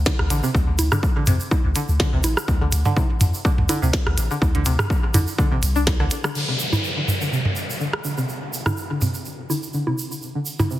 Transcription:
0.06 D3, kick, snare, closed hi-hat, high conga, shaker
0.19 D2, cross-stick
0.30 A1 D3, closed hi-hat, shaker
0.43 C3, shaker
0.55 D2, kick, shaker
0.68 D2
0.79 D2, closed hi-hat, high conga, shaker
0.92 D3, cross-stick, mid tom, shaker
1.03 kick, shaker
1.16 D3
1.26 F2 C3, closed hi-hat, mid tom, shaker
1.40 shaker
1.51 kick, high conga, shaker
1.65 D2
1.75 D3, closed hi-hat, shaker
1.88 D2, shaker
2.00 D3, kick, snare, closed hi-hat, shaker
2.13 D2 C3
2.24 A1, closed hi-hat, high conga, shaker
2.37 cross-stick, shaker
2.48 D2, kick, shaker
2.61 D2 D3
2.72 D2, closed hi-hat, shaker
2.85 D3, mid tom, shaker
2.97 C3, kick, high conga, shaker
3.21 F2, closed hi-hat, mid tom, shaker
3.34 shaker
3.45 D3, kick, shaker
3.58 D2, mid tom
3.69 D3, closed hi-hat, high conga, shaker
3.82 D2 C3, shaker
3.93 kick, snare, closed hi-hat, shaker
4.06 D2, cross-stick
4.18 A1, closed hi-hat, shaker
4.31 D3, shaker
4.42 D2, kick, high conga, shaker
4.55 D2 D3, closed hi-hat
4.65 D2 C3, closed hi-hat, shaker
4.79 cross-stick, mid tom, shaker
4.90 kick, shaker
5.14 F2 D3, closed hi-hat, mid tom, high conga, shaker
5.27 shaker
5.38 D3, kick, shaker
5.52 A1 C3
5.63 C2, closed hi-hat, shaker
5.76 D4, shaker
5.87 kick, cross-stick, snare, closed hi-hat, high conga, shaker
6.00 D2 D3, cross-stick
6.11 closed hi-hat, shaker
6.24 D3, cross-stick, shaker
6.35 D3, crash, downlifter, shaker
6.48 C3
6.60 shaker
6.73 mid tom, high conga, shaker
6.84 shaker
6.97 D3
7.08 mid tom, shaker
7.21 D3, shaker
7.32 C3, shaker
7.45 mid tom
7.56 shaker
7.70 shaker
7.80 D3, shaker
7.93 cross-stick
8.04 D3, shaker
8.18 C3, shaker
8.29 shaker
8.53 shaker
8.66 D3, cross-stick, mid tom, high conga, shaker
8.77 shaker
8.90 D3
9.01 C3, mid tom, shaker
9.14 shaker
9.25 shaker
9.50 D3, high conga, shaker
9.63 shaker
9.73 D3, shaker
9.87 C3, high conga
9.98 shaker
10.12 shaker
10.22 shaker
10.35 D3
10.46 shaker
10.59 D3, mid tom, high conga, shaker
10.70 C3, shaker

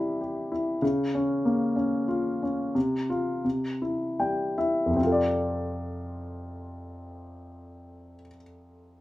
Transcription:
Already playing: C3 G3 E4
0.21 G4
0.52 E4
0.82 C#3
1.15 C#4
1.45 A#3
1.76 C#4
2.08 F4
2.43 C#4
2.75 C3
3.10 F4
3.45 C3
3.82 E4
4.20 G3 G5
4.58 E4 E5
4.86 F2
4.91 C3
4.96 C4
5.01 F4
5.07 A4
5.12 D5

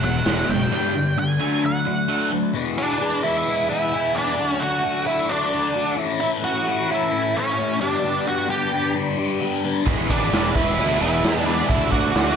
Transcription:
Already playing: G#3 F#4 E5
0.03 E1 E2 B2 E3 G#3 F#5, crash
0.25 E1 E2 B2 E3 G#3 B3, snare, crash
0.49 F#1 E2 B2 E3 G#3 G5, crash
0.71 G2 D3 G3 B3 G4 D5
0.95 G2 D3
1.18 G2 D3 G#5
1.39 D3 F#3 A3 D4 F#4 D5
1.64 D3 F#3 A3 F#5
1.86 D3 F#3 A3
2.08 D3 F#3 A3 D4
2.32 D3 F#3 A3
2.53 E2 B2 E3 G#3 B3 E4 G#4 B4
2.78 E2 B2 E3 G#3 B3 D4 G#4
3.00 E2 B2 E3 G#3 B3 G#4
3.23 E2 B2 E3 G#3 B3 E4 G#4
3.46 E2 B2 E3 G#3 B3 G#4
3.69 E2 B2 E3 G#3 B3 E4 G#4
3.93 E2 B2 E3 G#3 B3 G#4
4.15 E2 B2 E3 G#3 B3 D4 G#4
4.38 D3 F#3 A3 D4 F#4 A4
4.50 C#4
4.60 D3 A3 D4 F#4
4.84 D3 A3 D4 F#4
5.06 D3 A3 D4 E4 F#4
5.29 D3 A3 D4 F#4
5.52 D3 A3 D4 F#4
5.75 D3 A3 D4 F#4
5.97 A2 E3 A3 C#4 E4 A4
6.20 A2 E3 A3 C#4 E4
6.43 A2 E3 A3 C#4 E4 F#4
6.67 A2 E3 A3 C#4 E4
6.88 A2 E3 A3 C#4 E4
7.12 A2 E3 A3 C#4 E4
7.35 A2 E3 A3 C#4 E4
7.59 A2 E3 A3 C#4 E4
7.80 G2 D3 G3 B3 D4 G4 B4
8.02 G2 D3 G3 B3 D4 G4
8.25 G2 D3 G3 B3 D4 F#4 G4
8.48 G2 D3 G3 B3 D4 G4
8.72 G2 D3 G3 B3 D4 G4
8.94 G2 D3 G3 B3 D4 G4
9.16 G2 D3 G3 B3 D4 G4
9.39 G2 D3 G3 B3 D4 G4
9.64 G2 D3 G3 B3 D4 G4
9.86 E1 E2 B2 E3 G#3 B3 E4 G#4 B4, kick, crash
10.09 G#1 E2 B2 E3 G#3 B3 D4 E4 G#4 B4, kick
10.32 E1 E2 B2 E3 G#3 B3 E4 G#4, snare, crash
10.55 E1 E2 B2 E3 G#3 B3 E4 G#4 B4, kick
10.78 D2 E2 B2 E3 G#3 B3 E4 G#4, crash
11.00 E1 E2 B2 E3 G#3 B3 E4 G#4 B4
11.23 E2 B2 E3 G#3 B3 E4 G#4, snare, crash
11.45 E2 B2 E3 G#3 B3 D4 E4 G#4 B4
11.68 D2 D3 F#3 A3 D4 E4 F#4 A4, kick, crash
11.91 D2 D3 A3 D4 F#4 D5, kick
12.14 D2 D3 A3 D4 F#4, snare, crash

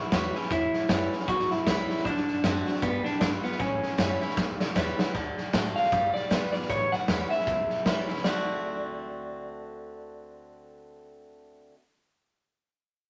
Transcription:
Already playing: E2 E4
0.12 E2 E3 G3 C#4 E4 F#4, kick, snare, hi-hat pedal
0.35 C#4 E4 G4, snare
0.43 snare
0.50 E2 A2 E4, kick, snare
0.73 muted upright bass stroke, snare
0.89 F#2 E3 G3 C#4 E4, kick, snare, hi-hat pedal
1.12 C#4 E4, snare
1.20 snare
1.28 E2 A2 F#4, kick, snare
1.39 snare
1.51 F#2 E4, snare
1.67 C#2 E3 G3 C#4 E4, kick, snare, hi-hat pedal
1.89 muted upright bass stroke, snare
1.97 snare
2.05 D2 D3 D4, kick, snare
2.17 snare
2.28 F#2, snare
2.44 F#2 D3 A3 C4 F#4, kick, snare, hi-hat pedal
2.66 C4 F#4, snare
2.74 snare
2.82 G1 G3 B3, kick, snare
3.04 D4, snare
3.20 G1 G3 B3 D4 F4, kick, snare, hi-hat pedal
3.43 B3 F4, muted upright bass stroke, snare
3.52 snare
3.59 A1 A2 C#4, kick, snare
3.83 muted upright bass stroke, snare
3.98 F#2 E3 G3 C#4 E4, kick, snare, hi-hat pedal
4.21 C#4 E4, snare
4.29 snare
4.37 E2 A2, kick, snare
4.60 F#2, snare
4.75 E2 E3 G3 C#4 E4, kick, snare, hi-hat pedal
4.99 muted upright bass stroke, snare
5.15 D2 D3, kick, snare
5.37 muted upright bass stroke, snare
5.53 A2 D3 A3 C4 F#4, kick, snare, hi-hat pedal
5.76 F5, snare
5.85 snare
5.92 G1 G3, kick, snare
6.14 D5, snare
6.30 F1 G3 B3 F4, kick, snare, hi-hat pedal
6.53 G#1 B3 F4 D5, snare
6.62 snare
6.70 A1 A2 C#5, kick, snare
6.92 F#5, muted upright bass stroke, snare
7.08 E2 E3 G3 C#4 E4, kick, snare, hi-hat pedal
7.30 C#4 E4 E5, snare
7.40 snare
7.47 C#2 E2, kick, snare
7.70 muted upright bass stroke, snare
7.86 G1 E3 G3 C#4 E4, kick, snare, hi-hat pedal
8.08 C#2 C#4 E4, snare
8.17 snare
8.24 D2 D3 A3 C4 F#4 D5, snare

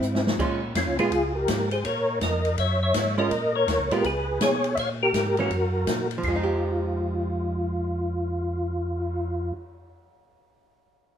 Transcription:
Already playing: C4 E4
0.01 G#2, hi-hat pedal
0.15 snare
0.27 snare
0.39 A#2 G#3 C#4 F4, kick, crash
0.75 F2 C#4 F4, kick, snare, hi-hat pedal, ride
0.87 C#2
0.99 A#2 G#3 B3 F4 G#4, ride
1.12 C#2, kick, ride
1.35 G4 A#4
1.48 G#2, kick, snare, hi-hat pedal, ride
1.71 G#4 C5, ride
1.85 A#2 A#4 C#5, kick, ride
2.21 F2 A#4 D#5, kick, snare, hi-hat pedal, ride
2.45 ride
2.58 F#2 C#5 E5, kick, ride
2.83 C#5 E5
2.94 G#2, kick, snare, hi-hat pedal, ride
3.18 G#3 C#4 F4 A#4 D#5
3.31 A#2, kick, ride
3.55 A#4 C#5
3.68 D#2, kick, snare, hi-hat pedal, ride
3.79 C#2
3.91 A#2 G#3 B3 F4 G4 A#4, ride
4.04 C#2 G#4 B4, kick, ride
4.41 B2 G#4 C#5, kick, snare, hi-hat pedal, ride
4.64 ride
4.75 A#2 E5, kick, ride
4.79 C#5 F5
5.03 G4 A#4
5.14 G#2, kick, snare, hi-hat pedal, ride
5.37 E3 A#3 C#4 F#4 A#4, ride
5.51 F#2, kick, ride
5.87 A#2, kick, snare, hi-hat pedal, ride
6.11 ride
6.18 F3
6.23 F2 F4, kick, crash
6.28 G#3
6.36 D#4
6.43 G4, cymbal swell

